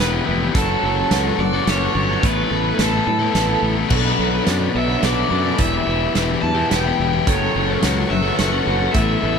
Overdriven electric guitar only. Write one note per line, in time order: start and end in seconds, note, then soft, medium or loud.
0.00 0.22 B4 medium
0.54 1.07 A4 loud
1.40 1.68 D5 loud
1.70 2.26 C#5 loud
2.26 2.82 B4 loud
2.80 3.60 A4 medium
3.90 4.42 B4 loud
4.77 5.05 E5 loud
5.05 5.58 D5 loud
5.59 6.11 E5 loud
6.42 6.69 A5 loud
6.69 7.28 G5 loud
7.28 7.79 C#5 medium
8.11 8.36 E5 loud
8.37 8.92 F#5 loud
8.92 9.39 E5 medium